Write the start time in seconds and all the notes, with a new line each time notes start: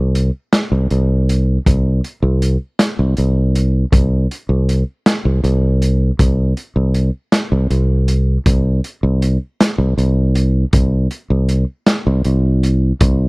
Already playing: C2
0.15 closed hi-hat
0.53 snare, closed hi-hat
0.72 C2
0.90 C2, closed hi-hat
1.29 closed hi-hat
1.66 C2, kick, closed hi-hat
2.04 closed hi-hat
2.22 C2
2.42 closed hi-hat
2.79 snare, closed hi-hat
2.99 C2
3.17 C2, closed hi-hat
3.55 closed hi-hat
3.92 C2, kick, closed hi-hat
4.31 closed hi-hat
4.49 C2
4.69 closed hi-hat
5.06 snare, closed hi-hat
5.25 C2
5.44 C2, closed hi-hat
5.82 closed hi-hat
6.19 C2, kick, closed hi-hat
6.57 closed hi-hat
6.76 C2
6.94 closed hi-hat
7.32 snare, closed hi-hat
7.52 C2
7.70 C2, closed hi-hat
8.08 closed hi-hat
8.46 C2, kick, closed hi-hat
8.84 closed hi-hat
9.03 C2
9.22 closed hi-hat
9.61 snare, closed hi-hat
9.78 C2
9.98 C2, closed hi-hat
10.35 closed hi-hat
10.73 C2, kick, closed hi-hat
11.11 closed hi-hat
11.30 C2
11.49 closed hi-hat
11.87 snare, closed hi-hat
12.07 C2
12.25 C2, closed hi-hat
12.63 closed hi-hat
13.01 C2, kick, closed hi-hat